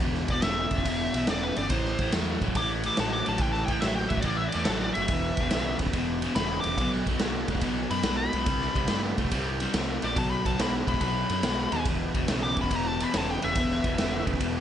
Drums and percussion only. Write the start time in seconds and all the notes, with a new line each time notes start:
0.00 kick
0.15 snare
0.28 kick, ride
0.42 snare, ride
0.71 kick, ride
0.78 kick, snare
0.85 kick, ride
1.14 ride
1.27 snare, ride
1.56 ride
1.70 kick, ride
1.85 snare
1.99 kick, ride
2.12 snare, ride
2.41 kick, ride
2.48 kick
2.55 kick, ride
2.83 ride
2.97 snare, ride
3.26 ride
3.38 kick, ride
3.54 snare
3.68 kick, ride
3.82 snare, ride
4.10 kick, ride
4.17 kick
4.22 kick, ride
4.52 ride
4.65 snare, ride
4.95 ride
5.08 kick, ride
5.37 kick, ride
5.51 snare, ride
5.79 kick, ride
5.86 kick, snare
5.93 kick, ride
6.22 ride
6.36 snare, ride
6.63 ride
6.78 kick, ride
6.92 snare
7.07 kick, ride
7.19 snare, ride
7.48 kick, ride
7.55 kick, snare
7.61 kick, ride
7.91 ride
8.03 snare, ride
8.33 ride
8.46 kick, ride
8.61 snare
8.75 kick, ride
8.88 snare, ride
9.18 kick, ride
9.25 kick, snare
9.31 kick, ride
9.60 ride
9.74 snare, ride
10.02 ride
10.16 kick, ride
10.45 kick, ride
10.59 snare, ride
10.87 kick, ride
10.94 kick, snare
11.01 kick, ride
11.29 ride
11.43 snare, ride
11.72 ride
11.85 kick, ride
12.15 kick, ride
12.28 snare, ride
12.57 kick, ride
12.63 kick, snare
12.71 kick, ride
13.00 ride
13.14 snare, ride
13.42 ride
13.55 kick, ride
13.70 snare
13.84 kick, ride
13.98 snare, ride
14.27 kick, ride
14.34 kick, snare
14.40 kick, ride